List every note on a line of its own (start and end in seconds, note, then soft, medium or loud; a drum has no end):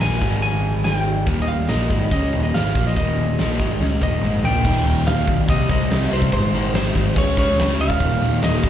0.00 0.21 A#1 medium
0.00 0.21 A#2 medium
0.00 0.21 F3 medium
0.00 0.22 A#3 loud
0.00 0.41 G#5 medium
0.00 snare loud
0.00 open hi-hat medium
0.21 1.23 G#1 medium
0.21 1.26 G#2 medium
0.21 1.26 D#3 loud
0.21 1.27 G#3 medium
0.21 kick medium
0.42 0.84 G#5 medium
0.42 open hi-hat soft
0.84 1.24 G5 loud
0.84 snare loud
0.84 open hi-hat soft
1.26 1.66 D#1 medium
1.26 1.68 D#2 medium
1.26 1.68 A#2 medium
1.26 1.69 D#3 loud
1.26 kick loud
1.26 open hi-hat soft
1.42 1.48 D#5 medium
1.48 1.70 F5 medium
1.69 1.90 A#1 medium
1.69 1.90 A#2 medium
1.69 1.90 F3 medium
1.69 1.90 A#3 medium
1.69 2.11 D#5 medium
1.69 snare loud
1.69 open hi-hat soft
1.90 2.10 G#1 loud
1.90 2.11 G#2 medium
1.90 2.11 D#3 medium
1.90 2.11 G#3 loud
1.90 kick loud
2.11 2.31 C#2 medium
2.11 2.32 C#3 medium
2.11 2.33 G#3 medium
2.11 2.33 C#4 loud
2.11 2.41 D#5 medium
2.11 kick medium
2.11 open hi-hat soft
2.33 2.53 D#1 medium
2.33 2.53 D#2 medium
2.33 2.53 A#2 loud
2.33 2.54 D#3 medium
2.43 2.53 D#5 medium
2.54 2.74 G#1 medium
2.54 2.74 G#2 medium
2.54 2.75 D#3 medium
2.54 2.75 G#3 loud
2.54 2.84 F5 medium
2.54 snare loud
2.54 open hi-hat soft
2.75 2.95 A#1 medium
2.75 2.96 A#2 medium
2.75 2.96 F3 medium
2.75 2.96 A#3 medium
2.75 kick loud
2.87 2.96 D#5 medium
2.96 3.36 D#1 loud
2.96 3.38 D#2 medium
2.96 3.38 A#2 loud
2.96 3.38 D#3 loud
2.96 4.02 D#5 medium
2.96 kick loud
2.96 open hi-hat soft
3.38 3.58 A#1 medium
3.38 3.59 A#2 medium
3.38 3.59 F3 medium
3.38 3.59 A#3 medium
3.38 snare loud
3.38 open hi-hat medium
3.59 3.79 G#1 medium
3.59 3.80 G#2 medium
3.59 3.80 D#3 medium
3.59 3.80 G#3 loud
3.59 kick medium
3.81 4.00 C#2 medium
3.81 4.01 C#3 medium
3.81 4.01 G#3 medium
3.81 4.01 C#4 medium
3.81 high tom soft
4.02 4.21 D#1 medium
4.02 4.22 D#2 medium
4.02 4.22 A#2 medium
4.02 4.22 D#3 medium
4.02 4.45 D#5 medium
4.02 kick medium
4.13 mid tom medium
4.22 4.42 G#1 medium
4.22 4.43 G#2 medium
4.22 4.43 D#3 medium
4.22 4.44 G#3 loud
4.22 mid tom medium
4.44 4.63 A#1 medium
4.44 4.64 A#2 medium
4.44 4.64 F3 medium
4.44 4.65 A#3 medium
4.44 5.07 G5 medium
4.44 floor tom medium
4.55 floor tom medium
4.65 4.78 D#1 loud
4.65 4.84 D#2 loud
4.65 4.85 A#2 loud
4.65 4.85 D#3 loud
4.65 kick loud
4.65 crash loud
4.85 4.99 D#1 medium
4.85 5.05 D#2 loud
4.85 5.06 A#2 loud
4.85 5.06 D#3 loud
4.85 open hi-hat medium
5.07 5.21 D#1 medium
5.07 5.25 D#2 medium
5.07 5.26 A#2 loud
5.07 5.27 D#3 loud
5.07 5.46 F5 medium
5.07 snare loud
5.07 open hi-hat medium
5.27 5.42 B1 medium
5.27 5.47 D#2 medium
5.27 5.47 A#2 medium
5.27 5.47 D#3 medium
5.27 kick medium
5.27 open hi-hat medium
5.48 5.62 C2 medium
5.48 5.69 C3 medium
5.48 5.69 G3 loud
5.48 5.69 C4 loud
5.48 5.70 D#5 loud
5.48 kick loud
5.48 open hi-hat medium
5.69 5.83 C2 medium
5.69 5.89 C3 medium
5.69 5.90 G3 loud
5.69 5.90 C4 medium
5.69 6.13 D#5 medium
5.69 kick medium
5.69 open hi-hat medium
5.90 6.04 C2 medium
5.90 6.10 C3 medium
5.90 6.11 G3 loud
5.90 6.11 C4 loud
5.90 snare loud
5.90 open hi-hat medium
6.11 6.25 C2 medium
6.11 6.31 C3 medium
6.11 6.32 G3 medium
6.11 6.32 C4 medium
6.11 6.32 C5 medium
6.11 open hi-hat medium
6.22 kick medium
6.32 6.46 G#1 loud
6.32 6.52 G#2 medium
6.32 6.53 D#3 medium
6.32 6.53 G#3 loud
6.32 6.74 C5 medium
6.32 kick medium
6.32 open hi-hat medium
6.53 6.67 G#1 medium
6.53 6.73 G#2 medium
6.53 6.73 D#3 medium
6.53 6.74 G#3 medium
6.53 open hi-hat medium
6.74 6.88 G#1 medium
6.74 6.94 G#2 loud
6.74 6.94 D#3 loud
6.74 6.95 G#3 loud
6.74 7.18 C5 medium
6.74 snare loud
6.74 open hi-hat medium
6.95 7.09 G#1 medium
6.95 7.15 G#2 medium
6.95 7.15 D#3 medium
6.95 7.15 G#3 loud
6.95 kick medium
6.95 open hi-hat medium
7.16 7.31 C#2 loud
7.16 7.36 C#3 medium
7.16 7.37 G#3 loud
7.16 7.37 C#4 loud
7.16 7.37 C#5 medium
7.16 kick loud
7.16 open hi-hat medium
7.37 7.52 C#2 medium
7.37 7.57 C#3 medium
7.37 7.58 G#3 medium
7.37 7.58 C#4 loud
7.37 7.77 C#5 medium
7.37 kick medium
7.37 open hi-hat medium
7.58 7.72 C#2 medium
7.58 7.78 C#3 loud
7.58 7.79 G#3 loud
7.58 7.79 C#4 loud
7.58 snare loud
7.58 open hi-hat medium
7.79 7.93 D2 medium
7.79 7.99 C#3 medium
7.79 7.99 G#3 medium
7.79 8.00 C#4 medium
7.79 8.39 F5 loud
7.79 open hi-hat medium
7.90 kick medium
8.00 8.14 D#1 loud
8.00 8.21 D#2 loud
8.00 8.21 A#2 loud
8.00 8.22 D#3 loud
8.00 kick medium
8.00 open hi-hat medium
8.21 8.36 D#1 medium
8.21 8.42 D#2 medium
8.21 8.42 A#2 medium
8.21 8.43 D#3 loud
8.21 open hi-hat medium
8.42 8.57 D#1 medium
8.42 8.63 D#2 medium
8.42 8.63 A#2 loud
8.42 8.63 D#3 loud
8.42 8.70 D#5 medium
8.42 snare loud
8.42 open hi-hat medium
8.64 8.70 D#1 medium
8.64 8.70 D#2 medium
8.64 8.70 A#2 loud
8.64 8.70 D#3 medium
8.64 kick medium
8.64 open hi-hat medium